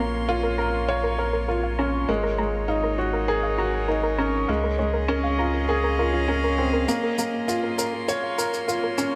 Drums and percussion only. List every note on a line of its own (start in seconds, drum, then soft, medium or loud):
6.89 shaker soft
7.19 shaker medium
7.49 shaker soft
7.79 shaker medium
8.09 shaker soft
8.39 shaker medium
8.54 shaker soft
8.69 shaker soft
8.98 shaker medium